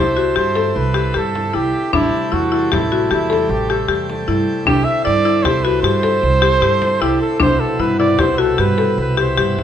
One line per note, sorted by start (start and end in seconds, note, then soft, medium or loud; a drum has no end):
0.00 0.31 C2 medium
0.00 1.91 D3 medium
0.00 1.91 C4 medium
0.00 1.91 E4 medium
0.00 0.13 G4 medium
0.00 0.34 C5 medium
0.17 0.33 F#4 medium
0.36 0.71 G2 medium
0.36 0.52 G4 medium
0.36 0.78 C5 medium
0.36 frame drum soft
0.56 0.88 A4 medium
0.56 frame drum soft
0.76 1.10 C2 medium
0.76 1.18 B4 medium
0.94 1.11 G4 medium
1.14 1.50 G2 medium
1.14 1.47 G4 medium
1.14 1.56 A4 medium
1.14 frame drum soft
1.35 frame drum soft
1.53 1.72 C2 medium
1.53 1.87 E4 medium
1.53 1.92 G4 medium
1.93 2.10 A1 medium
1.93 4.65 C3 medium
1.93 4.65 G3 medium
1.93 4.64 A3 medium
1.93 2.26 D4 medium
1.93 2.34 E4 medium
1.93 frame drum medium
2.32 2.67 E2 medium
2.32 2.49 E4 medium
2.32 2.74 F#4 medium
2.52 2.68 E4 medium
2.72 3.07 A1 medium
2.72 3.11 E4 medium
2.72 2.88 G4 medium
2.72 frame drum medium
2.92 3.08 F#4 medium
3.11 3.45 E2 loud
3.11 3.52 E4 medium
3.11 3.27 G4 medium
3.11 frame drum soft
3.30 3.63 A4 medium
3.30 frame drum soft
3.49 3.83 A1 medium
3.49 3.72 G4 medium
3.70 3.86 G4 medium
3.70 4.09 A4 medium
3.88 4.22 E2 medium
3.88 4.21 G4 medium
3.88 frame drum soft
4.10 frame drum soft
4.28 4.45 G2 medium
4.28 4.60 E4 medium
4.65 4.83 C2 medium
4.65 7.37 D3 medium
4.65 7.37 C4 medium
4.65 5.00 D4 medium
4.65 7.37 E4 medium
4.65 4.86 G4 medium
4.65 frame drum soft
4.84 5.04 E5 medium
5.04 5.40 G2 medium
5.04 5.22 E4 medium
5.04 5.44 D5 medium
5.25 5.42 E4 medium
5.43 5.79 C2 medium
5.43 5.62 G4 medium
5.43 5.64 C5 medium
5.43 frame drum medium
5.63 5.81 F#4 medium
5.63 5.81 B4 medium
5.82 6.17 G2 medium
5.82 6.00 G4 medium
5.82 7.03 C5 loud
5.82 frame drum soft
6.03 6.36 A4 medium
6.03 frame drum soft
6.23 6.57 C2 loud
6.42 6.59 G4 medium
6.62 6.96 G2 medium
6.62 6.95 G4 medium
6.82 frame drum soft
7.01 7.18 C2 medium
7.01 7.34 E4 medium
7.01 7.21 G4 medium
7.22 7.39 A4 medium
7.40 7.57 C2 medium
7.40 9.63 B2 medium
7.40 9.63 C3 medium
7.40 7.73 D4 medium
7.40 9.63 E4 medium
7.40 7.61 C5 medium
7.40 frame drum medium
7.60 7.82 A4 medium
7.79 8.13 G2 medium
7.79 7.96 E4 medium
7.79 7.98 B4 medium
7.99 8.16 E4 medium
7.99 8.21 D5 medium
7.99 frame drum soft
8.18 8.54 C2 medium
8.18 8.35 G4 medium
8.18 8.41 C5 medium
8.18 frame drum medium
8.38 8.55 F#4 medium
8.38 8.61 A4 medium
8.58 8.93 G2 medium
8.58 8.75 G4 medium
8.58 8.99 B4 medium
8.78 9.11 A4 medium
8.78 frame drum soft
8.98 9.33 C2 medium
8.98 9.22 B4 medium
9.17 9.34 G4 medium
9.17 9.60 C5 medium
9.17 frame drum soft
9.38 9.55 G2 medium
9.38 9.63 G4 medium
9.58 9.63 G1 medium
9.58 frame drum soft